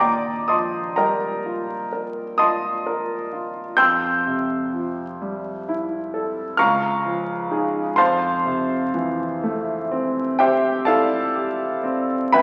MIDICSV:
0, 0, Header, 1, 2, 480
1, 0, Start_track
1, 0, Key_signature, -1, "major"
1, 0, Tempo, 961538
1, 962, Tempo, 933126
1, 1918, Time_signature, 9, 3, 24, 8
1, 4322, Tempo, 961538
1, 5762, Tempo, 1000000
1, 6280, End_track
2, 0, Start_track
2, 0, Title_t, "Grand piano"
2, 0, Program_c, 0, 0
2, 0, Control_c, 0, 64, 127
2, 0, Note_on_c, 0, 39, 48
2, 0, Note_on_c, 0, 74, 63
2, 0, Note_on_c, 0, 75, 60
2, 0, Note_on_c, 0, 79, 60
2, 0, Note_on_c, 0, 81, 57
2, 0, Note_on_c, 0, 82, 60
2, 0, Note_on_c, 0, 84, 59
2, 0, Note_on_c, 0, 86, 81
2, 0, Note_on_c, 0, 87, 84
2, 5, Note_on_c, 0, 46, 37
2, 230, Note_off_c, 0, 79, 0
2, 230, Note_off_c, 0, 82, 0
2, 231, Note_off_c, 0, 74, 0
2, 239, Note_off_c, 0, 87, 0
2, 239, Note_on_c, 0, 87, 67
2, 244, Note_off_c, 0, 81, 0
2, 244, Note_on_c, 0, 81, 57
2, 245, Note_off_c, 0, 84, 0
2, 245, Note_on_c, 0, 84, 58
2, 246, Note_off_c, 0, 75, 0
2, 246, Note_off_c, 0, 86, 0
2, 246, Note_on_c, 0, 75, 51
2, 251, Note_on_c, 0, 53, 36
2, 398, Note_off_c, 0, 46, 0
2, 472, Note_off_c, 0, 81, 0
2, 473, Note_off_c, 0, 75, 0
2, 473, Note_off_c, 0, 84, 0
2, 480, Note_on_c, 0, 82, 72
2, 487, Note_off_c, 0, 87, 0
2, 487, Note_on_c, 0, 70, 55
2, 487, Note_on_c, 0, 79, 48
2, 488, Note_on_c, 0, 75, 52
2, 491, Note_on_c, 0, 55, 38
2, 635, Note_off_c, 0, 53, 0
2, 728, Note_on_c, 0, 65, 38
2, 868, Note_off_c, 0, 55, 0
2, 940, Note_off_c, 0, 70, 0
2, 940, Note_off_c, 0, 75, 0
2, 940, Note_off_c, 0, 79, 0
2, 956, Note_off_c, 0, 82, 0
2, 961, Note_on_c, 0, 70, 37
2, 1106, Note_off_c, 0, 65, 0
2, 1193, Note_on_c, 0, 87, 88
2, 1199, Note_on_c, 0, 75, 57
2, 1201, Note_on_c, 0, 81, 67
2, 1202, Note_on_c, 0, 84, 62
2, 1204, Note_on_c, 0, 65, 46
2, 1345, Note_off_c, 0, 70, 0
2, 1444, Note_on_c, 0, 70, 43
2, 1584, Note_off_c, 0, 65, 0
2, 1681, Note_on_c, 0, 65, 38
2, 1824, Note_off_c, 0, 70, 0
2, 1895, Note_off_c, 0, 39, 0
2, 1896, Note_off_c, 0, 75, 0
2, 1897, Note_off_c, 0, 81, 0
2, 1897, Note_off_c, 0, 84, 0
2, 1909, Note_on_c, 0, 91, 96
2, 1912, Note_on_c, 0, 79, 64
2, 1913, Note_off_c, 0, 87, 0
2, 1914, Note_on_c, 0, 84, 71
2, 1914, Note_on_c, 0, 88, 71
2, 1919, Note_off_c, 0, 65, 0
2, 1919, Note_on_c, 0, 41, 50
2, 1926, Control_c, 0, 64, 0
2, 2006, Control_c, 0, 64, 127
2, 2163, Note_on_c, 0, 48, 40
2, 2406, Note_on_c, 0, 53, 40
2, 2552, Note_off_c, 0, 48, 0
2, 2654, Note_on_c, 0, 55, 47
2, 2800, Note_off_c, 0, 53, 0
2, 2895, Note_on_c, 0, 64, 48
2, 3040, Note_off_c, 0, 55, 0
2, 3128, Note_on_c, 0, 69, 43
2, 3272, Note_off_c, 0, 64, 0
2, 3342, Note_off_c, 0, 79, 0
2, 3342, Note_off_c, 0, 88, 0
2, 3343, Note_off_c, 0, 84, 0
2, 3345, Note_off_c, 0, 41, 0
2, 3352, Note_on_c, 0, 89, 90
2, 3360, Note_off_c, 0, 91, 0
2, 3360, Note_on_c, 0, 82, 70
2, 3361, Note_on_c, 0, 77, 75
2, 3361, Note_on_c, 0, 85, 78
2, 3363, Note_off_c, 0, 69, 0
2, 3364, Note_on_c, 0, 37, 57
2, 3372, Control_c, 0, 64, 0
2, 3453, Control_c, 0, 64, 127
2, 3598, Note_on_c, 0, 53, 46
2, 3834, Note_on_c, 0, 63, 44
2, 3837, Note_on_c, 0, 68, 49
2, 3982, Note_off_c, 0, 53, 0
2, 4057, Note_off_c, 0, 77, 0
2, 4057, Note_off_c, 0, 82, 0
2, 4057, Note_off_c, 0, 85, 0
2, 4058, Note_off_c, 0, 63, 0
2, 4059, Note_off_c, 0, 37, 0
2, 4059, Note_off_c, 0, 68, 0
2, 4065, Note_on_c, 0, 84, 99
2, 4073, Note_off_c, 0, 89, 0
2, 4074, Note_on_c, 0, 81, 67
2, 4075, Note_on_c, 0, 72, 77
2, 4075, Note_on_c, 0, 77, 74
2, 4077, Note_on_c, 0, 41, 53
2, 4089, Control_c, 0, 64, 0
2, 4158, Control_c, 0, 64, 127
2, 4322, Note_on_c, 0, 48, 48
2, 4564, Note_on_c, 0, 52, 46
2, 4708, Note_off_c, 0, 48, 0
2, 4809, Note_on_c, 0, 57, 47
2, 4953, Note_off_c, 0, 52, 0
2, 5049, Note_on_c, 0, 60, 50
2, 5194, Note_off_c, 0, 57, 0
2, 5265, Note_off_c, 0, 81, 0
2, 5266, Note_off_c, 0, 72, 0
2, 5266, Note_off_c, 0, 77, 0
2, 5281, Note_off_c, 0, 84, 0
2, 5284, Note_on_c, 0, 79, 88
2, 5289, Note_on_c, 0, 67, 66
2, 5290, Note_on_c, 0, 72, 67
2, 5290, Note_on_c, 0, 76, 58
2, 5430, Note_off_c, 0, 60, 0
2, 5509, Note_off_c, 0, 67, 0
2, 5509, Note_off_c, 0, 72, 0
2, 5510, Note_off_c, 0, 76, 0
2, 5517, Note_on_c, 0, 81, 88
2, 5521, Note_on_c, 0, 74, 68
2, 5523, Note_off_c, 0, 79, 0
2, 5524, Note_on_c, 0, 69, 71
2, 5524, Note_on_c, 0, 77, 72
2, 5525, Note_on_c, 0, 64, 58
2, 5767, Note_on_c, 0, 67, 46
2, 5902, Note_off_c, 0, 64, 0
2, 5997, Note_on_c, 0, 60, 52
2, 6145, Note_off_c, 0, 67, 0
2, 6220, Note_off_c, 0, 74, 0
2, 6221, Note_off_c, 0, 41, 0
2, 6222, Note_off_c, 0, 69, 0
2, 6222, Note_off_c, 0, 77, 0
2, 6233, Note_on_c, 0, 83, 105
2, 6237, Note_off_c, 0, 81, 0
2, 6237, Note_on_c, 0, 79, 68
2, 6239, Note_on_c, 0, 71, 70
2, 6239, Note_on_c, 0, 76, 73
2, 6241, Note_off_c, 0, 60, 0
2, 6243, Note_on_c, 0, 42, 63
2, 6248, Control_c, 0, 64, 0
2, 6280, Note_off_c, 0, 42, 0
2, 6280, Note_off_c, 0, 71, 0
2, 6280, Note_off_c, 0, 76, 0
2, 6280, Note_off_c, 0, 79, 0
2, 6280, Note_off_c, 0, 83, 0
2, 6280, End_track
0, 0, End_of_file